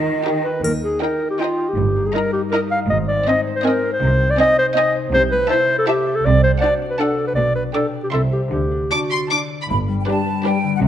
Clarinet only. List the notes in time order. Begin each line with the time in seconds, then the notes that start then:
0.44 B4
0.64 A#4
0.84 G#4
1.02 A#4
1.31 G4
1.39 F4
1.69 G4
2.06 G#4
2.15 A#4
2.33 G4
2.52 A#4
2.71 F5
2.90 D#5
3.08 D5
3.28 D#5
3.56 C5
3.65 A#4
3.93 C5
4.30 D5
4.40 D#5
4.59 C5
4.76 D#5
5.14 C5
5.32 B4
5.50 C5
5.78 A4
5.88 G4
6.16 A4
6.26 D5
6.44 C5
6.61 D5
6.90 B4
7.00 A4
7.27 B4
7.35 D5
7.55 B4
7.74 A4
8.04 G4
8.13 A4
8.33 G4
8.53 G4
8.92 F#4